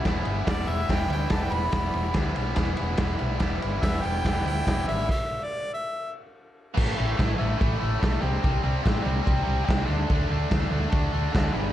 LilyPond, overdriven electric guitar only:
\new Staff \with { instrumentName = "Overdriven electric guitar" } { \clef bass \time 4/4 \key e \minor \tempo 4 = 143 <e g b e'>4 <e g b e'>8 <g b e'>8 <e g b e'>8 <g b e'>8 <e g b e'>4 | <e g b e'>4 <e g b e'>8 <g b e'>8 <e g b e'>8 <g b e'>8 <e g b e'>4 | <e g b e'>4 <e g b e'>8 <g b e'>8 <e g b e'>8 <g b e'>8 <e g b e'>4 | r1 |
<a, e a>8 <a, e a>8 <a, e a>8 <a, e a>8 <a, e a>8 <a, e a>8 <a, e a>8 <c g c'>8 | <c g c'>8 <c g c'>8 <c g c'>8 <c g c'>8 <c g c'>8 <c g c'>8 <c g c'>8 <d a d'>8 | <d a d'>8 <d a d'>8 <d a d'>8 <d a d'>8 <d a d'>8 <d a d'>8 <d a d'>8 <g, d g>8 | }